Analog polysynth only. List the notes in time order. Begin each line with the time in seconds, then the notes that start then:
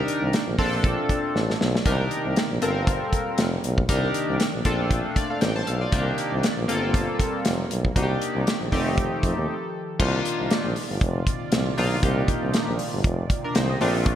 Already playing: D4 D#4 G4 A#4
0.58 C4 D4 F4 A4
1.85 D4 D#4 G4 A#4
2.62 C4 F4 A4 A#4
3.89 D4 D#4 G4 A#4
4.65 C4 D4 F4 A4
5.16 F4 D5
5.30 A4 F5
5.41 A#4 G5
5.56 C5 A5
5.67 A4 F5
5.81 F4 D5
5.92 A#3 D4 D#4 G4
6.68 A#3 C4 F4 A4
7.96 A#3 D4 D#4 F#4
8.03 G4
8.72 A3 C4 D#4 G4
9.99 A#3 D4 D#4 F4
11.77 A#3 D4 D#4 F4
12.02 A#3 D4 D#4 G4
13.44 D4 A#4
13.55 D#4 C5
13.70 G4 D#5
13.81 A3 C4 D4 F4